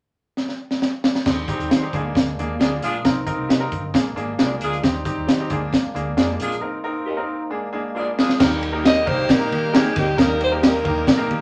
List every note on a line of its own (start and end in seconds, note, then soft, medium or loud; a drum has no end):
0.37 snare medium
0.49 snare soft
0.71 snare medium
0.82 snare medium
1.04 snare loud
1.15 snare medium
1.25 1.43 D#2 medium
1.25 1.92 G3 medium
1.25 1.92 C4 medium
1.25 1.41 C4 medium
1.25 1.92 D#4 medium
1.25 1.41 D#4 medium
1.25 1.41 G4 medium
1.25 kick medium
1.25 snare medium
1.25 crash medium
1.25 muted conga soft
1.25 low conga medium
1.48 1.71 C4 medium
1.48 1.71 D#4 medium
1.48 1.71 G4 medium
1.48 kick medium
1.48 closed hi-hat medium
1.59 1.68 D#2 loud
1.59 closed hi-hat soft
1.70 1.88 D#3 medium
1.70 1.83 D#4 medium
1.70 1.83 G4 medium
1.70 1.84 C5 medium
1.70 snare loud
1.70 closed hi-hat medium
1.83 1.94 C4 medium
1.83 1.94 D#4 medium
1.83 1.94 G4 medium
1.92 2.10 D2 medium
1.92 3.03 G#3 medium
1.92 3.92 A#3 medium
1.92 2.29 A#3 medium
1.92 3.03 D4 medium
1.92 2.29 D4 medium
1.92 2.29 G#4 loud
1.92 kick medium
1.92 closed hi-hat medium
1.92 low conga soft
2.05 high conga soft
2.15 2.33 D2 loud
2.15 kick medium
2.15 snare loud
2.15 closed hi-hat medium
2.15 muted conga soft
2.37 2.55 D#2 medium
2.37 2.53 A#3 medium
2.37 2.53 D4 medium
2.37 2.54 G#4 medium
2.37 closed hi-hat medium
2.37 muted conga soft
2.37 high conga medium
2.49 high conga medium
2.59 2.77 D2 loud
2.59 2.91 A#3 medium
2.59 2.69 D4 medium
2.59 2.91 D4 medium
2.59 2.69 F4 medium
2.59 2.72 F4 medium
2.59 2.69 G#4 medium
2.59 2.72 G#4 medium
2.59 2.91 G#4 medium
2.59 2.73 D5 medium
2.59 snare medium
2.59 closed hi-hat medium
2.71 high conga medium
2.82 3.00 A#1 medium
2.82 2.97 D4 medium
2.82 2.97 F4 medium
2.82 2.97 G#4 loud
2.82 closed hi-hat medium
2.82 low conga medium
3.05 3.22 C2 medium
3.05 3.20 C4 medium
3.05 3.94 C4 medium
3.05 3.20 D#4 medium
3.05 3.94 D#4 medium
3.05 3.20 A#4 medium
3.05 kick medium
3.05 snare loud
3.05 closed hi-hat medium
3.05 low conga medium
3.26 3.49 C4 medium
3.26 3.49 D#4 medium
3.26 3.49 A#4 medium
3.26 kick medium
3.26 closed hi-hat medium
3.26 muted conga soft
3.37 3.46 C2 loud
3.49 3.61 G4 medium
3.49 3.62 A#4 medium
3.49 3.62 D#5 medium
3.49 snare loud
3.49 closed hi-hat medium
3.60 3.83 C4 medium
3.60 3.83 D#4 medium
3.60 3.83 A#4 medium
3.72 3.89 G1 medium
3.72 kick medium
3.72 closed hi-hat soft
3.72 low conga medium
3.85 high conga soft
3.94 4.12 A#1 loud
3.94 4.83 G#3 medium
3.94 4.09 A#3 medium
3.94 4.83 A#3 medium
3.94 4.09 D4 medium
3.94 4.83 D4 medium
3.94 4.09 G#4 medium
3.94 kick medium
3.94 snare loud
3.94 closed hi-hat medium
4.16 4.33 G#1 medium
4.16 4.31 A#3 medium
4.16 4.31 D4 medium
4.16 4.31 G#4 loud
4.16 closed hi-hat medium
4.16 high conga medium
4.29 high conga medium
4.38 4.56 C2 loud
4.38 4.69 A#3 medium
4.38 4.49 D4 medium
4.38 4.69 D4 medium
4.38 4.51 F4 medium
4.38 4.48 F4 medium
4.38 4.51 G#4 medium
4.38 4.69 G#4 medium
4.38 4.49 G#4 medium
4.38 4.52 D5 medium
4.38 snare loud
4.38 closed hi-hat medium
4.50 high conga medium
4.61 4.78 D2 medium
4.61 4.76 D4 medium
4.61 4.76 F4 medium
4.61 4.76 G#4 loud
4.61 closed hi-hat medium
4.61 low conga medium
4.73 closed hi-hat soft
4.82 5.01 D#2 loud
4.82 5.49 G3 medium
4.82 5.49 C4 medium
4.82 4.98 C4 medium
4.82 5.49 D#4 medium
4.82 4.99 D#4 medium
4.82 4.99 G4 medium
4.82 kick medium
4.82 snare loud
4.82 closed hi-hat medium
4.82 muted conga soft
4.82 low conga medium
5.05 5.28 C4 medium
5.05 5.28 D#4 medium
5.05 5.28 G4 medium
5.05 kick medium
5.05 closed hi-hat medium
5.05 muted conga soft
5.16 5.25 D#2 medium
5.27 5.46 D#3 medium
5.27 5.40 G4 medium
5.27 5.40 C5 medium
5.27 5.41 D#5 medium
5.27 snare loud
5.27 closed hi-hat medium
5.27 muted conga soft
5.40 5.51 C4 medium
5.40 5.51 D#4 medium
5.40 5.51 G4 medium
5.50 5.68 D2 medium
5.50 6.61 G#3 medium
5.50 8.37 A#3 medium
5.50 5.87 A#3 medium
5.50 6.61 D4 medium
5.50 5.86 D4 medium
5.50 5.86 G#4 loud
5.50 kick medium
5.50 closed hi-hat medium
5.50 muted conga soft
5.50 low conga medium
5.61 high conga soft
5.73 kick medium
5.73 snare loud
5.73 closed hi-hat medium
5.73 muted conga soft
5.85 muted fingered electric bass stroke soft
5.94 6.17 D2 medium
5.94 6.10 A#3 medium
5.94 6.10 D4 medium
5.94 6.10 G#4 medium
5.94 closed hi-hat medium
5.94 high conga medium
6.06 high conga medium
6.17 6.34 F2 loud
6.17 6.47 A#3 medium
6.17 6.47 D4 medium
6.17 6.27 D4 medium
6.17 6.29 F4 medium
6.17 6.27 F4 medium
6.17 6.47 G#4 medium
6.17 6.30 G#4 medium
6.17 6.27 G#4 medium
6.17 6.30 D5 medium
6.17 snare loud
6.17 closed hi-hat medium
6.29 high conga medium
6.40 6.57 A#1 medium
6.40 6.55 D4 medium
6.40 6.55 F4 medium
6.40 6.55 G#4 loud
6.40 snare soft
6.40 closed hi-hat medium
6.40 low conga medium
6.52 closed hi-hat medium
6.61 6.76 C4 medium
6.61 7.51 C4 soft
6.61 6.77 D#4 medium
6.61 7.50 D#4 medium
6.61 6.77 A#4 medium
6.84 7.06 C4 medium
6.84 7.07 D#4 medium
6.84 7.07 A#4 medium
7.06 7.19 G4 medium
7.06 7.19 A#4 medium
7.06 7.20 D#5 medium
7.17 7.40 C4 medium
7.17 7.40 D#4 medium
7.17 7.40 A#4 medium
7.50 8.40 G#3 medium
7.50 7.66 A#3 medium
7.50 7.66 D4 medium
7.50 8.39 D4 medium
7.50 7.66 G#4 medium
7.73 7.88 A#3 medium
7.73 7.88 D4 medium
7.73 7.88 G#4 medium
7.95 8.26 A#3 medium
7.95 8.25 D4 medium
7.95 8.05 D4 medium
7.95 8.08 F4 medium
7.95 8.06 F4 medium
7.95 8.26 G#4 medium
7.95 8.08 G#4 medium
7.95 8.06 G#4 medium
7.95 8.09 D5 medium
8.18 8.33 D4 medium
8.18 8.33 F4 medium
8.18 8.33 G#4 medium
8.18 snare loud
8.29 snare medium
8.38 9.04 D#2 medium
8.38 11.41 G3 medium
8.38 11.41 A#3 medium
8.38 8.62 A#3 medium
8.38 11.41 A#3 medium
8.38 11.41 D#4 medium
8.38 8.62 D#4 medium
8.38 11.41 D#4 medium
8.38 8.62 G4 medium
8.38 11.41 G4 loud
8.38 8.62 A#4 medium
8.38 kick loud
8.38 snare loud
8.38 crash medium
8.38 muted conga soft
8.38 low conga medium
8.63 ride medium
8.72 8.96 A#3 medium
8.72 8.96 D#4 medium
8.72 8.96 G4 medium
8.72 8.95 A#4 medium
8.84 8.97 G4 medium
8.84 8.97 A#4 medium
8.84 9.10 D#5 loud
8.84 8.98 D#5 medium
8.84 snare loud
8.84 ride medium
9.06 9.25 C2 medium
9.06 9.29 A#3 medium
9.06 9.29 D#4 medium
9.06 9.29 G4 medium
9.06 9.29 A#4 medium
9.06 9.33 C5 medium
9.06 kick medium
9.06 ride soft
9.06 low conga medium
9.18 high conga medium
9.29 9.46 A#1 loud
9.29 9.77 A#4 medium
9.29 kick medium
9.29 snare loud
9.29 ride medium
9.29 muted conga soft
9.39 9.62 A#3 medium
9.39 9.62 D#4 medium
9.39 9.62 G4 medium
9.39 9.62 A#4 medium
9.52 9.86 D#3 medium
9.52 ride medium
9.52 muted conga soft
9.52 high conga medium
9.63 high conga medium
9.73 10.04 A#3 medium
9.73 10.04 D#4 medium
9.73 9.86 G4 medium
9.73 10.04 G4 medium
9.73 9.97 G#4 medium
9.73 10.04 A#4 medium
9.73 9.86 A#4 medium
9.73 9.87 D#5 loud
9.73 snare loud
9.73 ride medium
9.86 high conga medium
9.95 10.14 D2 loud
9.95 10.05 G4 medium
9.95 10.21 G4 medium
9.95 10.06 A#4 medium
9.95 10.06 D#5 medium
9.95 kick medium
9.95 snare soft
9.95 ride medium
10.17 10.82 D#2 loud
10.17 10.41 A#3 medium
10.17 10.41 D#4 medium
10.17 10.40 G4 medium
10.17 10.40 A#4 medium
10.17 10.41 A#4 loud
10.17 kick loud
10.17 snare loud
10.17 ride medium
10.17 muted conga soft
10.17 low conga medium
10.41 10.53 C5 loud
10.41 ride medium
10.41 muted conga soft
10.52 10.74 A#3 medium
10.52 10.74 D#4 medium
10.52 10.74 G4 medium
10.52 10.74 A#4 medium
10.62 10.75 G4 medium
10.62 10.75 A#4 medium
10.62 10.76 D#5 medium
10.62 snare loud
10.62 ride medium
10.67 11.41 A#4 medium
10.84 11.03 D#2 medium
10.84 11.07 A#3 medium
10.84 11.07 D#4 medium
10.84 11.07 G4 medium
10.84 11.07 A#4 medium
10.84 kick medium
10.84 ride soft
10.84 low conga medium
10.97 high conga soft
11.07 11.25 A#1 loud
11.07 kick medium
11.07 snare loud
11.07 ride medium
11.07 muted conga soft
11.17 11.41 A#3 medium
11.17 11.40 D#4 medium
11.17 11.40 G4 medium
11.17 11.40 A#4 loud
11.29 11.41 D#3 loud
11.29 ride soft
11.29 muted conga soft
11.29 high conga medium